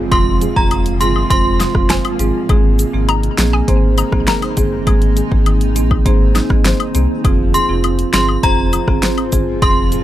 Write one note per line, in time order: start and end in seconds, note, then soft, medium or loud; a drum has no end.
0.00 2.45 G#2 medium
0.00 10.04 C3 medium
0.00 0.10 F3 medium
0.00 2.45 F3 medium
0.00 0.70 F4 medium
0.00 2.45 F4 medium
0.00 0.41 G#4 medium
0.00 1.30 C5 medium
0.00 downlifter medium
0.11 0.47 F1 loud
0.11 2.49 F3 medium
0.11 0.52 G#3 medium
0.11 2.47 A#3 medium
0.11 0.53 C4 medium
0.11 0.53 F4 loud
0.11 0.24 C6 medium
0.11 kick loud
0.11 closed hi-hat medium
0.11 high woodblock medium
0.41 1.00 G#4 medium
0.41 closed hi-hat medium
0.41 cabasa medium
0.56 1.02 F1 loud
0.56 0.78 G#3 medium
0.56 0.78 C4 medium
0.56 0.78 F4 medium
0.56 0.69 A#5 medium
0.56 kick medium
0.71 1.59 F4 medium
0.71 closed hi-hat medium
0.71 high woodblock medium
0.86 closed hi-hat medium
1.01 1.24 G1 loud
1.01 1.23 G#3 medium
1.01 1.23 C4 medium
1.01 1.23 F4 medium
1.01 2.19 G#4 medium
1.01 1.13 C6 medium
1.01 closed hi-hat medium
1.01 cabasa medium
1.16 high woodblock medium
1.30 1.66 F1 loud
1.30 1.71 G#3 loud
1.30 1.71 C4 medium
1.30 1.72 F4 loud
1.30 1.89 C5 medium
1.30 1.72 C6 medium
1.30 kick loud
1.30 closed hi-hat medium
1.60 2.55 F4 medium
1.60 snare medium
1.60 closed hi-hat medium
1.60 cabasa medium
1.60 high woodblock medium
1.75 1.98 F1 loud
1.75 1.97 G#3 medium
1.75 1.97 C4 medium
1.75 1.97 F4 medium
1.75 kick loud
1.75 cross-stick medium
1.90 3.68 C5 medium
1.90 3.12 G#5 loud
1.90 finger snap loud
1.90 snare loud
1.90 closed hi-hat medium
2.05 closed hi-hat soft
2.05 high woodblock medium
2.19 2.31 G#1 loud
2.19 2.42 G#3 medium
2.19 2.42 C4 medium
2.19 2.42 F4 medium
2.19 2.79 G#4 medium
2.19 closed hi-hat medium
2.19 cabasa medium
2.49 2.85 G#1 loud
2.49 7.21 D#3 medium
2.49 7.21 G#3 medium
2.49 4.87 G#3 medium
2.49 2.90 A#3 medium
2.49 4.85 A#3 medium
2.49 2.90 C4 medium
2.49 7.21 D#4 medium
2.49 2.90 G#4 loud
2.49 kick loud
2.49 closed hi-hat medium
2.49 high woodblock medium
2.79 3.38 G#4 medium
2.79 closed hi-hat medium
2.79 cabasa medium
2.94 3.29 G#1 loud
2.94 3.16 A#3 medium
2.94 3.16 C4 medium
2.94 3.16 G#4 medium
3.09 3.97 D#4 medium
3.09 3.55 A#5 loud
3.09 closed hi-hat medium
3.09 high woodblock medium
3.23 closed hi-hat medium
3.38 3.62 A#1 medium
3.38 3.60 A#3 medium
3.38 3.60 C4 medium
3.38 4.57 G#4 medium
3.38 3.61 G#4 medium
3.38 finger snap medium
3.38 snare loud
3.38 closed hi-hat medium
3.38 cabasa medium
3.53 3.99 G#5 loud
3.53 high woodblock medium
3.68 4.03 G#1 loud
3.68 4.09 A#3 loud
3.68 4.09 C4 medium
3.68 4.09 G#4 loud
3.68 4.27 C5 medium
3.68 kick medium
3.68 closed hi-hat medium
3.98 5.45 D#4 medium
3.98 4.25 A#5 loud
3.98 closed hi-hat medium
3.98 cabasa medium
3.98 high woodblock medium
4.12 4.24 A#1 medium
4.12 4.35 A#3 medium
4.12 4.35 C4 medium
4.12 4.35 G#4 medium
4.12 kick medium
4.12 cross-stick medium
4.27 4.42 A#4 medium
4.27 5.42 A#5 loud
4.27 finger snap medium
4.27 snare loud
4.27 closed hi-hat medium
4.42 6.05 C5 medium
4.42 closed hi-hat soft
4.42 high woodblock medium
4.57 4.81 G1 medium
4.57 4.79 A#3 medium
4.57 4.79 C4 medium
4.57 5.16 G#4 medium
4.57 4.79 G#4 medium
4.57 kick medium
4.57 closed hi-hat medium
4.57 cabasa medium
4.87 5.22 G#1 loud
4.87 7.24 G#3 medium
4.87 5.28 A#3 medium
4.87 10.04 C4 medium
4.87 5.28 C4 medium
4.87 5.28 G#4 loud
4.87 kick loud
4.87 closed hi-hat medium
4.87 high woodblock medium
5.02 closed hi-hat soft
5.17 5.76 G#4 medium
5.17 closed hi-hat medium
5.17 cabasa medium
5.31 5.77 G#1 loud
5.31 5.53 A#3 medium
5.31 5.54 C4 medium
5.31 5.54 G#4 medium
5.31 kick medium
5.46 6.34 D#4 medium
5.46 closed hi-hat medium
5.46 high woodblock medium
5.61 closed hi-hat medium
5.76 6.00 A#1 medium
5.76 5.98 A#3 medium
5.76 5.98 C4 medium
5.76 6.94 G#4 medium
5.76 5.98 G#4 medium
5.76 closed hi-hat medium
5.76 cabasa medium
5.91 kick loud
5.91 high woodblock medium
6.06 6.41 G#1 loud
6.06 6.47 A#3 loud
6.06 6.47 C4 medium
6.06 6.47 G#4 loud
6.06 6.65 C5 medium
6.06 kick loud
6.06 closed hi-hat medium
6.35 7.30 D#4 medium
6.35 snare medium
6.35 closed hi-hat medium
6.35 cabasa medium
6.35 high woodblock medium
6.50 6.74 G#1 medium
6.50 6.72 A#3 medium
6.50 6.72 C4 medium
6.50 6.72 G#4 medium
6.50 kick medium
6.50 cross-stick medium
6.65 8.43 C5 medium
6.65 finger snap loud
6.65 snare loud
6.65 closed hi-hat medium
6.80 closed hi-hat soft
6.80 high woodblock medium
6.95 7.07 C2 loud
6.95 7.17 A#3 medium
6.95 7.17 C4 medium
6.95 7.54 G#4 medium
6.95 7.17 G#4 medium
6.95 closed hi-hat medium
6.95 cabasa medium
7.24 7.60 F1 loud
7.24 10.04 G#2 medium
7.24 9.61 F3 medium
7.24 10.04 F3 medium
7.24 7.65 C4 medium
7.24 7.66 F4 medium
7.24 10.04 F4 medium
7.24 7.66 G#4 loud
7.24 kick loud
7.24 closed hi-hat medium
7.24 high woodblock medium
7.54 8.13 G#4 medium
7.54 7.67 C6 medium
7.54 closed hi-hat medium
7.54 cabasa medium
7.69 8.04 F1 medium
7.69 7.91 C4 medium
7.69 7.91 F4 medium
7.69 7.91 G#4 medium
7.84 8.72 F4 medium
7.84 closed hi-hat medium
7.84 high woodblock medium
7.99 closed hi-hat medium
8.13 8.37 G1 loud
8.13 8.35 C4 medium
8.13 8.36 F4 medium
8.13 9.32 G#4 medium
8.13 8.36 G#4 medium
8.13 8.26 C6 medium
8.13 finger snap medium
8.13 snare loud
8.13 closed hi-hat medium
8.13 cabasa medium
8.29 high woodblock medium
8.43 8.79 F1 loud
8.43 8.84 C4 loud
8.43 8.84 F4 medium
8.43 8.85 G#4 loud
8.43 9.03 C5 medium
8.43 8.85 A#5 loud
8.43 kick medium
8.43 closed hi-hat medium
8.73 10.04 F4 medium
8.73 closed hi-hat medium
8.73 cabasa medium
8.73 high woodblock medium
8.88 9.00 G1 medium
8.88 9.10 C4 medium
8.88 9.10 F4 medium
8.88 9.10 G#4 medium
8.88 kick medium
8.88 cross-stick medium
9.03 10.04 C5 medium
9.03 finger snap medium
9.03 snare loud
9.03 closed hi-hat medium
9.18 closed hi-hat soft
9.18 high woodblock medium
9.32 9.56 G1 loud
9.32 9.54 C4 medium
9.32 9.55 F4 medium
9.32 9.92 G#4 medium
9.32 9.55 G#4 medium
9.32 kick medium
9.32 closed hi-hat medium
9.32 cabasa medium
9.62 9.98 F1 loud
9.62 10.04 F3 medium
9.62 10.03 C4 medium
9.62 10.03 F4 medium
9.62 10.03 G#4 loud
9.62 9.75 C6 medium
9.62 kick loud
9.62 closed hi-hat medium
9.62 high woodblock medium
9.92 10.04 G#4 medium
9.92 closed hi-hat medium
9.92 cabasa medium